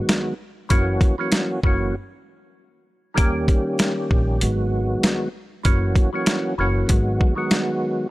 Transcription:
Already playing: tonewheel organ D#3 F#3 G#3 B3 F#4
0.09 snare, closed hi-hat
0.69 upright bass F#1, tonewheel organ E3 F#3 A#3 C#4 F#4, kick, closed hi-hat
1.01 kick, closed hi-hat
1.18 tonewheel organ E3 F#3 A#3 C#4 F#4
1.32 snare, closed hi-hat
1.63 upright bass F#1, tonewheel organ E3 F#3 A#3 C#4 F#4, kick
3.14 upright bass D#2, tonewheel organ D#3 G3 A#3 C#4 G4, kick, closed hi-hat
3.48 kick, closed hi-hat
3.79 snare, closed hi-hat
4.11 upright bass A#1, kick
4.40 upright bass G#1, tonewheel organ D#3 F#3 G#3 B3 F#4, closed hi-hat
5.03 snare, closed hi-hat
5.63 upright bass F#1, tonewheel organ E3 F#3 A#3 C#4 F#4, kick, closed hi-hat
5.96 kick, closed hi-hat
6.13 tonewheel organ E3 F#3 A#3 C#4 F#4
6.26 snare, closed hi-hat
6.58 upright bass F#1, tonewheel organ E3 F#3 A#3 C#4 F#4
6.87 upright bass G#1, tonewheel organ D#3 F#3 G#3 B3 F#4, kick, closed hi-hat
7.21 kick
7.36 tonewheel organ D#3 F#3 G#3 B3 F#4
7.51 snare, closed hi-hat

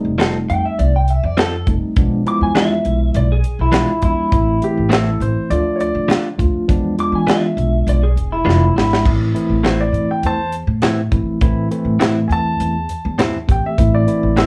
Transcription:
Already playing: tine electric piano G3 A3 C4 D#4
0.05 upright bass F1
0.18 clean electric guitar F3 C4 D#4 A4, snare, closed hi-hat
0.50 upright bass F2, clean electric guitar G5, closed hi-hat
0.65 clean electric guitar E5
0.79 upright bass C2, clean electric guitar D5, closed hi-hat
0.96 clean electric guitar G5
1.08 clean electric guitar E5, closed hi-hat
1.23 upright bass F2, clean electric guitar D5
1.37 clean electric guitar F3 C4 D#4 A4, snare, closed hi-hat
1.67 upright bass F1, tine electric piano G3 A3 C4 D#4, kick, closed hi-hat
1.83 muted upright bass stroke
1.96 upright bass E1, tine electric piano F3 G#3 B3 D4, kick, closed hi-hat
2.26 tine electric piano F3 G#3 B3 E4, clean electric guitar D6, closed hi-hat
2.41 upright bass E2, clean electric guitar G#5
2.55 clean electric guitar E3 G#3 D4 F4 E5, snare, closed hi-hat
2.85 upright bass B1, closed hi-hat
3.14 upright bass B1, clean electric guitar D5, closed hi-hat
3.32 clean electric guitar G#4
3.44 closed hi-hat
3.59 upright bass B1, clean electric guitar E4
3.72 clean electric guitar E3 G#3 D4 F4, snare, closed hi-hat
4.02 upright bass E2, tine electric piano F3 G#3 B3 D4, clean electric guitar E4, kick, closed hi-hat
4.32 upright bass A1, tine electric piano E3 A3 C4 E4, kick, closed hi-hat
4.61 tine electric piano E3 A3 C4 E4, upright piano G4, closed hi-hat
4.77 upright bass A1
4.89 clean electric guitar A2 A3 C4 E4, upright piano A4, snare, closed hi-hat
5.20 upright bass A1, upright piano C5, closed hi-hat
5.50 upright bass D2, tine electric piano F3 A3 D4 F4, upright piano D5, closed hi-hat
5.76 upright piano C#5
5.80 upright piano D5, closed hi-hat
5.95 upright bass D3
6.08 clean electric guitar D3 A3 D4 F4, snare, closed hi-hat
6.38 upright bass D2, tine electric piano F3 A3 D4 F4, kick, closed hi-hat
6.54 muted upright bass stroke
6.68 upright bass E2, tine electric piano F3 G#3 B3 D4, kick, closed hi-hat
6.98 tine electric piano G#3 B3 D4 F4, clean electric guitar D6, closed hi-hat
7.12 upright bass E3, clean electric guitar G#5
7.27 clean electric guitar E3 G#3 D4 F4 E5, snare, closed hi-hat
7.57 upright bass B1, closed hi-hat
7.87 upright bass B1, clean electric guitar D5, closed hi-hat
8.03 clean electric guitar G#4
8.16 upright bass E1, closed hi-hat
8.32 clean electric guitar E4
8.45 upright bass F1, clean electric guitar E3 G#3 D4 F4
8.49 snare
8.75 upright bass G#1, tine electric piano F3 G#3 B3 D4, clean electric guitar E4, snare
8.93 snare
9.05 upright bass A1, tine electric piano E3 A3 C4 E4, kick, crash
9.34 tine electric piano E3 A3 C4 E4, closed hi-hat
9.49 upright bass A1
9.63 clean electric guitar A2 E3 C4 E4, upright piano C5, snare, closed hi-hat
9.81 upright piano D5
9.93 upright bass A2, closed hi-hat
10.11 upright piano G5
10.23 upright bass E2, upright piano C5 A5, closed hi-hat
10.52 closed hi-hat
10.67 upright bass A2
10.82 clean electric guitar A2 E3 C4 E4, snare, closed hi-hat
11.12 upright bass A1, tine electric piano E3 A3 C4 E4, kick, closed hi-hat
11.26 muted upright bass stroke
11.41 upright bass A2, tine electric piano E3 A3 C4 E4, kick, closed hi-hat
11.71 tine electric piano E3 A3 C4 E4, closed hi-hat
11.85 upright bass A2
12.00 clean electric guitar A2 E3 C4 E4, snare, closed hi-hat
12.28 upright bass E2, upright piano G#5, closed hi-hat
12.32 upright piano A5
12.60 upright bass E2, closed hi-hat
12.89 closed hi-hat
13.05 upright bass E2
13.18 clean electric guitar A2 E3 C4 E4, snare, closed hi-hat
13.48 upright bass A2, tine electric piano E3 A3 C4 G4, upright piano G5, kick, closed hi-hat
13.66 upright piano E5
13.78 upright bass A1, tine electric piano E3 A3 C4 E4, kick, closed hi-hat
13.95 upright piano D5
14.07 tine electric piano E3 A3 C4 E4, closed hi-hat
14.23 upright bass A1
14.36 clean electric guitar A2 E3 C4 E4, upright piano E4 C5, snare, closed hi-hat

